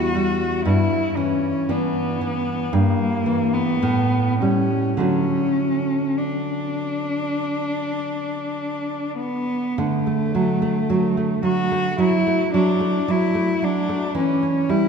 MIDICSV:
0, 0, Header, 1, 3, 480
1, 0, Start_track
1, 0, Key_signature, 2, "major"
1, 0, Tempo, 1030928
1, 308, Time_signature, 4, 2, 24, 8
1, 1270, Tempo, 1092896
1, 1750, Tempo, 1192843
1, 4150, Tempo, 1092896
1, 6390, End_track
2, 0, Start_track
2, 0, Title_t, "Cello"
2, 0, Program_c, 0, 42
2, 0, Note_on_c, 0, 66, 59
2, 301, Note_off_c, 0, 66, 0
2, 303, Note_on_c, 0, 64, 59
2, 542, Note_on_c, 0, 61, 54
2, 549, Note_off_c, 0, 64, 0
2, 790, Note_on_c, 0, 59, 49
2, 797, Note_off_c, 0, 61, 0
2, 1269, Note_on_c, 0, 58, 59
2, 1275, Note_off_c, 0, 59, 0
2, 1622, Note_on_c, 0, 59, 53
2, 1628, Note_off_c, 0, 58, 0
2, 1980, Note_off_c, 0, 59, 0
2, 1982, Note_on_c, 0, 61, 51
2, 2221, Note_off_c, 0, 61, 0
2, 2225, Note_on_c, 0, 61, 54
2, 2699, Note_on_c, 0, 62, 42
2, 2705, Note_off_c, 0, 61, 0
2, 3901, Note_off_c, 0, 62, 0
2, 3903, Note_on_c, 0, 59, 47
2, 4148, Note_on_c, 0, 57, 50
2, 4155, Note_off_c, 0, 59, 0
2, 4877, Note_off_c, 0, 57, 0
2, 4879, Note_on_c, 0, 66, 60
2, 5113, Note_off_c, 0, 66, 0
2, 5121, Note_on_c, 0, 64, 66
2, 5355, Note_off_c, 0, 64, 0
2, 5360, Note_on_c, 0, 62, 58
2, 5606, Note_on_c, 0, 64, 55
2, 5613, Note_off_c, 0, 62, 0
2, 5844, Note_on_c, 0, 62, 57
2, 5850, Note_off_c, 0, 64, 0
2, 6077, Note_off_c, 0, 62, 0
2, 6079, Note_on_c, 0, 61, 53
2, 6306, Note_on_c, 0, 64, 62
2, 6312, Note_off_c, 0, 61, 0
2, 6390, Note_off_c, 0, 64, 0
2, 6390, End_track
3, 0, Start_track
3, 0, Title_t, "Nylon-string guitar"
3, 0, Program_c, 1, 24
3, 0, Note_on_c, 1, 40, 47
3, 0, Note_on_c, 1, 55, 39
3, 0, Note_on_c, 1, 64, 42
3, 50, Note_off_c, 1, 55, 0
3, 51, Note_off_c, 1, 64, 0
3, 69, Note_on_c, 1, 55, 34
3, 289, Note_off_c, 1, 55, 0
3, 290, Note_off_c, 1, 40, 0
3, 305, Note_on_c, 1, 43, 45
3, 545, Note_on_c, 1, 52, 36
3, 769, Note_off_c, 1, 52, 0
3, 787, Note_on_c, 1, 52, 38
3, 788, Note_on_c, 1, 62, 39
3, 1009, Note_off_c, 1, 52, 0
3, 1009, Note_off_c, 1, 62, 0
3, 1030, Note_on_c, 1, 52, 35
3, 1250, Note_off_c, 1, 43, 0
3, 1252, Note_off_c, 1, 52, 0
3, 1270, Note_on_c, 1, 43, 42
3, 1503, Note_on_c, 1, 52, 36
3, 1732, Note_off_c, 1, 52, 0
3, 1736, Note_off_c, 1, 43, 0
3, 1751, Note_on_c, 1, 45, 47
3, 1990, Note_on_c, 1, 55, 31
3, 2211, Note_off_c, 1, 45, 0
3, 2213, Note_on_c, 1, 50, 37
3, 2214, Note_off_c, 1, 55, 0
3, 2219, Note_on_c, 1, 54, 28
3, 2225, Note_on_c, 1, 57, 28
3, 4126, Note_off_c, 1, 50, 0
3, 4129, Note_off_c, 1, 54, 0
3, 4132, Note_off_c, 1, 57, 0
3, 4148, Note_on_c, 1, 50, 43
3, 4274, Note_on_c, 1, 57, 30
3, 4397, Note_on_c, 1, 54, 37
3, 4470, Note_off_c, 1, 57, 0
3, 4516, Note_on_c, 1, 57, 34
3, 4591, Note_off_c, 1, 54, 0
3, 4638, Note_on_c, 1, 54, 35
3, 4709, Note_off_c, 1, 57, 0
3, 4759, Note_on_c, 1, 57, 34
3, 4830, Note_off_c, 1, 54, 0
3, 4872, Note_on_c, 1, 54, 35
3, 4950, Note_off_c, 1, 57, 0
3, 4998, Note_on_c, 1, 57, 31
3, 5066, Note_off_c, 1, 54, 0
3, 5099, Note_off_c, 1, 50, 0
3, 5115, Note_on_c, 1, 54, 36
3, 5190, Note_off_c, 1, 57, 0
3, 5241, Note_on_c, 1, 57, 34
3, 5309, Note_off_c, 1, 54, 0
3, 5360, Note_on_c, 1, 54, 36
3, 5432, Note_off_c, 1, 57, 0
3, 5475, Note_on_c, 1, 57, 33
3, 5552, Note_off_c, 1, 54, 0
3, 5598, Note_on_c, 1, 54, 37
3, 5669, Note_off_c, 1, 57, 0
3, 5715, Note_on_c, 1, 57, 33
3, 5791, Note_off_c, 1, 54, 0
3, 5834, Note_on_c, 1, 54, 35
3, 5908, Note_off_c, 1, 57, 0
3, 5953, Note_on_c, 1, 57, 31
3, 6026, Note_off_c, 1, 54, 0
3, 6065, Note_on_c, 1, 52, 42
3, 6074, Note_off_c, 1, 57, 0
3, 6189, Note_on_c, 1, 61, 30
3, 6305, Note_on_c, 1, 55, 39
3, 6380, Note_off_c, 1, 61, 0
3, 6390, Note_off_c, 1, 52, 0
3, 6390, Note_off_c, 1, 55, 0
3, 6390, End_track
0, 0, End_of_file